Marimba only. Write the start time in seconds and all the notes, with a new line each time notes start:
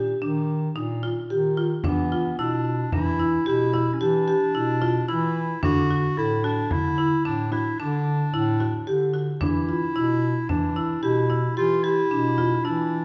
Already playing: G4
0.22 D4
0.76 D#4
1.03 F4
1.30 G4
1.57 F4
1.85 D4
2.12 F4
2.39 E4
2.93 D4
3.20 E4
3.46 G4
3.74 E4
4.01 G4
4.28 G4
4.55 E4
4.82 F4
5.09 E4
5.63 D4
5.91 F#4
6.17 A4
6.44 F#4
6.98 E4
7.25 D4
7.52 F#4
7.80 D4
8.34 E4
8.60 F#4
8.87 G4
9.14 F#4
9.41 D4
9.69 F4
9.96 E4
10.49 D4
10.76 E4
11.03 G4
11.30 E4
11.57 G4
11.84 G4
12.11 D4
12.38 F4
12.65 E4